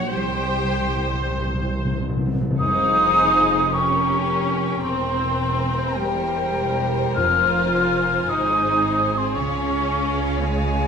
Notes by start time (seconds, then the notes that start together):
Already playing: A#1 F#3 F#4 C#5 F#5
0.11 C2 C3 G3 G4 C5 G5
0.21 C3
0.30 C3
0.38 C3
0.46 C3
0.63 C3
0.80 C3
0.88 C3
0.97 C3
1.05 C3
1.13 C3
1.21 C3
1.30 C3
1.38 C3
1.45 C3
1.54 C3
1.61 C3
1.69 C3
1.77 C3
1.85 C3
1.93 C3
2.00 C3
2.09 C3
2.17 C3
2.26 C3
2.33 C3
2.41 C3
2.51 C3
2.59 F1 F2 D#4 G#4 C5 F5 D#6
3.74 C#4 G4 A#4 G5 C#6
4.83 E1 E2 C4 A#4 C5 C6
5.96 G3 G5
7.16 F1 F2 F4 G#5 F6
8.29 G#1 G#2 D#4 G#4 D#6
9.18 C4 C6
9.35 C#2 C#3 C#4 C#5 F5 C#6
10.43 G#3 G#5